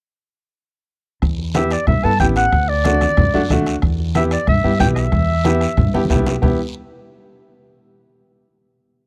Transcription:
1.22 E2, bombo low, bombo rim, long guiro
1.38 high conga
1.54 B3 E4 G4 E5, bombo rim, high conga, short guiro
1.71 D5, bombo rim, short guiro
1.87 G2 E5, bombo low, bombo rim, high conga, low conga, long guiro
2.04 G2 B3 E4 A4 A5
2.20 A1 B3 E4 G4 G5, bombo low, bombo rim, high conga, short guiro
2.36 F#5, bombo rim, short guiro
2.52 D2, bombo low, bombo rim, long guiro
2.69 D5, high conga
2.85 A3 D4 F#4, bombo rim, high conga, short guiro
3.01 bombo rim, high conga, short guiro
3.17 F#2, bombo low, bombo rim, high conga, low conga, long guiro
3.34 F#2 A3 D4 F#4
3.50 D2 A3 D4 F#4, bombo low, bombo rim, high conga, low conga, short guiro
3.66 bombo rim, short guiro
3.82 E2, bombo low, bombo rim, long guiro
3.99 high conga
4.15 B3 E4 G4 E5, bombo rim, high conga, short guiro
4.31 D5, bombo rim, short guiro
4.47 G2 E5, bombo low, bombo rim, high conga, low conga, long guiro
4.64 G2 B3 E4 G4
4.79 B1 B3 E4 G4 G5, bombo low, bombo rim, high conga, short guiro
4.96 E5, bombo rim, short guiro
5.12 E2, bombo low, bombo rim, low conga, long guiro
5.29 high conga
5.44 B3 E4 G4, bombo rim, high conga, short guiro
5.61 bombo rim, short guiro
5.77 G2, bombo low, bombo rim, high conga, low conga, long guiro
5.94 G2 B3 E4 G4, high conga
6.05 high conga
6.09 B1 B3 E4 G4, bombo low, bombo rim, short guiro
6.16 low conga
6.26 bombo rim, low conga, short guiro
6.42 E2 B3 E4 G4, bombo low, low conga, long guiro

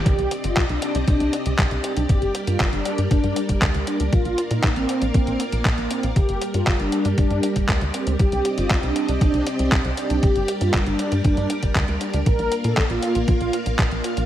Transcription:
Already playing: D5
0.06 C2 C4 G4 D#5, kick, closed hi-hat
0.19 C2, closed hi-hat
0.31 closed hi-hat
0.44 G1 F4, closed hi-hat
0.57 C2, kick, clap, closed hi-hat
0.69 C2 D4, closed hi-hat
0.82 closed hi-hat
0.95 C2, closed hi-hat
1.08 C2 D4, kick, closed hi-hat
1.20 C2, closed hi-hat
1.33 closed hi-hat
1.46 C2, closed hi-hat
1.58 C2, kick, clap, closed hi-hat
1.71 C2, closed hi-hat
1.84 D4, closed hi-hat
1.97 C2, closed hi-hat
2.09 G1 G3 G4 A#4, kick, closed hi-hat
2.22 G1, closed hi-hat
2.35 closed hi-hat
2.47 G2 F4, closed hi-hat
2.60 G1, kick, clap, closed hi-hat
2.73 G1 D4, closed hi-hat
2.85 closed hi-hat
2.98 G2, closed hi-hat
3.11 G1 D4, kick, closed hi-hat
3.24 G2, closed hi-hat
3.36 closed hi-hat
3.49 G1, kick, closed hi-hat
3.62 D2, kick, clap, closed hi-hat
3.75 D2, closed hi-hat
3.87 D4, closed hi-hat
4.00 D2, closed hi-hat
4.13 A#1 A#3 F4 F5, kick, closed hi-hat
4.25 A#1, closed hi-hat
4.38 closed hi-hat
4.51 A#2 D#4, closed hi-hat
4.63 A#1, kick, clap, closed hi-hat
4.76 A#1 C4, closed hi-hat
4.89 closed hi-hat
5.02 A#1, closed hi-hat
5.14 A#1 C4, kick, closed hi-hat
5.27 A#1, closed hi-hat
5.40 closed hi-hat
5.52 A#1, closed hi-hat
5.65 A#1, kick, clap, closed hi-hat
5.78 A#1, closed hi-hat
5.91 C4, closed hi-hat
6.03 A#1, closed hi-hat
6.16 G1 G3 G4 D5, kick, closed hi-hat
6.29 G1, closed hi-hat
6.42 closed hi-hat
6.54 G2 F4, closed hi-hat
6.67 G1, kick, clap, closed hi-hat
6.79 G1 D4, closed hi-hat
6.92 closed hi-hat
7.05 G2, closed hi-hat
7.18 G1 D4, kick, closed hi-hat
7.30 G2, closed hi-hat
7.43 closed hi-hat
7.56 G1, kick, closed hi-hat
7.69 D2, kick, clap, closed hi-hat
7.81 D2, closed hi-hat
7.94 C4, closed hi-hat
8.07 D2, closed hi-hat
8.19 C2 C4 G4 D#5, kick, closed hi-hat
8.32 C2, closed hi-hat
8.45 closed hi-hat
8.58 G1 F4, closed hi-hat
8.70 C2, kick, clap, closed hi-hat
8.83 C2 D4, closed hi-hat
8.96 closed hi-hat
9.09 C2, closed hi-hat
9.21 C2 D4, kick, closed hi-hat
9.34 C2, closed hi-hat
9.47 closed hi-hat
9.59 C2, closed hi-hat
9.72 C2, kick, clap, closed hi-hat
9.85 C2, closed hi-hat
9.97 D4, closed hi-hat
10.10 C2, closed hi-hat
10.23 G1 G3 G4 A#4, kick, closed hi-hat
10.36 G1, closed hi-hat
10.48 closed hi-hat
10.61 G2 F4, closed hi-hat
10.74 G1, kick, clap, closed hi-hat
10.86 G1 D4, closed hi-hat
10.99 closed hi-hat
11.12 G2, closed hi-hat
11.24 G1 D4, kick, closed hi-hat
11.37 G2, closed hi-hat
11.50 closed hi-hat
11.63 G1, kick, closed hi-hat
11.75 D2, kick, clap, closed hi-hat
11.88 D2, closed hi-hat
12.01 D4, closed hi-hat
12.14 D2, closed hi-hat
12.26 A#1 A#3 A#4 F5, kick, closed hi-hat
12.39 A#1, closed hi-hat
12.52 closed hi-hat
12.64 A#2 A4, closed hi-hat
12.77 A#1, kick, clap, closed hi-hat
12.90 A#1 F4, closed hi-hat
13.03 closed hi-hat
13.15 A#1, closed hi-hat
13.28 A#1 F4, kick, closed hi-hat
13.41 A#1, closed hi-hat
13.53 closed hi-hat
13.66 A#1, closed hi-hat
13.79 A#1, kick, clap, closed hi-hat
13.92 A#1, closed hi-hat
14.04 F4, closed hi-hat
14.17 A#1, closed hi-hat

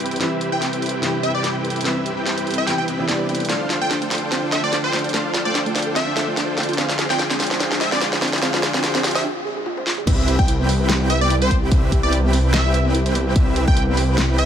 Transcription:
Already playing: C3 E3 G3 C4 E4 G4 B4 G5
0.00 closed hi-hat
0.06 closed hi-hat
0.11 closed hi-hat
0.16 C3 E3, closed hi-hat
0.20 G3 C4 E4 G4 A4 B4 E5, snare, closed hi-hat
0.41 closed hi-hat
0.52 C4 E4 G4 B4 G5
0.62 snare, closed hi-hat
0.73 closed hi-hat
0.82 closed hi-hat
0.86 closed hi-hat
0.89 closed hi-hat
1.01 C3 E3 G3 B4, snare, closed hi-hat
1.05 E4
1.23 E5, closed hi-hat
1.35 D5
1.44 snare, closed hi-hat
1.65 closed hi-hat
1.70 closed hi-hat
1.76 closed hi-hat
1.81 C3 E3, closed hi-hat
1.85 G3 C4 E4 G4 B4 E5, snare, closed hi-hat
2.06 closed hi-hat
2.17 C4 E4 G4 B4 G5
2.26 snare, closed hi-hat
2.38 closed hi-hat
2.47 closed hi-hat
2.51 closed hi-hat
2.54 closed hi-hat
2.58 E5
2.66 C3 E3 G3 B3 E4 G5, snare, closed hi-hat
2.78 G5
2.88 closed hi-hat
2.98 C3 E3 G3 B3 E4
3.07 C3 E3 G3 B3 C4 D4 E4 G4 B4 D5, snare, closed hi-hat
3.29 C4 E4 G4 B4 G5, closed hi-hat
3.35 closed hi-hat
3.40 closed hi-hat
3.45 closed hi-hat
3.49 D3 A3 D4 F4 A4 C5 F5, snare, closed hi-hat, riser
3.61 D4
3.70 F4, snare, closed hi-hat
3.81 A3 D4 F4 A4 C5 G5
3.91 D4, snare, closed hi-hat
4.02 A3, closed hi-hat
4.11 D5, snare, closed hi-hat, open hi-hat
4.18 closed hi-hat
4.22 A4
4.32 C4, snare, closed hi-hat
4.43 D4
4.52 A4 E5, snare, closed hi-hat
4.63 A3 D5
4.73 D4, snare, closed hi-hat
4.84 C5
4.93 A3, snare, closed hi-hat
4.99 closed hi-hat
5.04 F4, closed hi-hat
5.09 closed hi-hat
5.14 A3 D4 F4 A4 C5 F5, snare, closed hi-hat
5.25 D4
5.34 F4, snare, closed hi-hat
5.45 A3 D4 F4 A4 C5 D5 G5
5.55 D4, snare, closed hi-hat
5.66 A3, closed hi-hat
5.75 D5, snare, closed hi-hat, open hi-hat
5.82 closed hi-hat
5.87 A4
5.96 C4 E5, snare, closed hi-hat
6.07 D4
6.16 A4, snare, closed hi-hat
6.28 A3
6.37 D4, snare, closed hi-hat
6.48 C5
6.58 A3, snare, closed hi-hat
6.63 closed hi-hat
6.69 F4, closed hi-hat
6.73 closed hi-hat
6.78 G#3 C4 D4 F4 G#4 C5 F5, snare, closed hi-hat
6.89 F4, snare
6.99 G#4, snare, closed hi-hat
7.10 C4 D4 F4 G#4 C5 G5, snare
7.19 F4, snare, closed hi-hat
7.30 C4, snare, closed hi-hat
7.40 F5, snare, closed hi-hat, open hi-hat
7.47 closed hi-hat
7.51 C5, snare
7.60 D4, snare, closed hi-hat
7.71 F4, snare
7.81 C5 E5, snare, closed hi-hat
7.92 C4 D5, snare
8.01 F4, snare, closed hi-hat
8.12 D5, snare
8.22 C4, snare, closed hi-hat
8.28 closed hi-hat
8.33 G#4, snare, closed hi-hat
8.38 closed hi-hat
8.42 C4 D4 F4 G#4 C5 F5, snare, closed hi-hat
8.54 F4, snare
8.63 G#4, snare, closed hi-hat
8.74 C4 D4 F4 G#4 C5 G5, snare
8.84 F4, snare, closed hi-hat
8.95 C4, snare, closed hi-hat
9.04 F5, snare, closed hi-hat, open hi-hat
9.11 closed hi-hat
9.15 C5 E5, snare
9.25 D4
9.36 F4
9.45 G#4
9.57 G#4
9.66 F4, high tom
9.77 C5, high tom
9.87 F4, snare
9.98 G#4, mid tom
10.07 C2 C3 B3 C4 E4 G4 B4 E5, kick, closed hi-hat, crash
10.18 E4
10.28 G4, closed hi-hat
10.39 C2 B3 G5, kick
10.48 E4, closed hi-hat
10.59 B3
10.69 E5, open hi-hat
10.80 B4
10.89 C4, snare, closed hi-hat
11.01 E4
11.10 B4 E5, closed hi-hat
11.21 B3 D5
11.30 E4, closed hi-hat
11.42 C5, closed hi-hat
11.51 B3, kick, closed hi-hat
11.62 G4
11.71 C2 B3 C4 E4 E5, kick, closed hi-hat
11.83 E4
11.92 G4, kick, closed hi-hat
12.03 C2 B3 C4 E4 G4 B4 D5 G5
12.13 E4, closed hi-hat
12.24 B3
12.33 E5, open hi-hat
12.44 B4
12.54 C4 E5, snare, closed hi-hat
12.65 E4
12.74 B4, closed hi-hat
12.85 B3
12.95 E4, closed hi-hat
13.06 C5, closed hi-hat
13.15 B3, closed hi-hat
13.26 G4
13.36 C2 B3 C4, kick, closed hi-hat
13.47 E4
13.56 G4, closed hi-hat
13.68 C2 B3 C4 E4 G4 B4 G5, kick
13.77 E4, closed hi-hat
13.88 B3
13.97 E5, open hi-hat
14.09 B4
14.18 C4, snare, closed hi-hat
14.29 E4
14.38 B4 E5, closed hi-hat

